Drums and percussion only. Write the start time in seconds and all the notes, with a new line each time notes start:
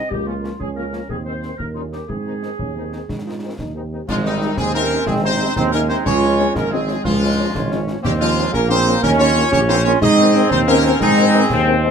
0.11 concert bass drum
0.44 snare
0.60 concert bass drum
0.93 snare
1.10 concert bass drum
1.43 snare
1.60 concert bass drum
1.93 snare
2.09 concert bass drum
2.43 snare
2.59 concert bass drum
2.93 snare
3.09 concert bass drum, snare
3.59 concert bass drum, snare
4.09 concert bass drum, snare, crash
4.25 snare
4.42 snare
4.57 concert bass drum, snare
4.90 snare
5.07 concert bass drum, snare
5.56 concert bass drum, snare
5.73 snare
5.90 snare
6.06 concert bass drum, snare, crash
6.23 snare
6.39 snare
6.56 concert bass drum, snare
6.88 snare
7.05 concert bass drum, snare
7.55 concert bass drum, snare
7.72 snare
7.88 snare
8.05 concert bass drum, snare, crash
8.21 snare
8.38 snare
8.54 concert bass drum, snare
8.87 snare
9.03 concert bass drum, snare
9.53 concert bass drum, snare
9.69 snare
9.85 snare
10.02 concert bass drum, snare, crash
10.18 snare
10.34 snare
10.51 concert bass drum, snare
10.84 snare
11.01 concert bass drum, snare
11.50 concert bass drum, snare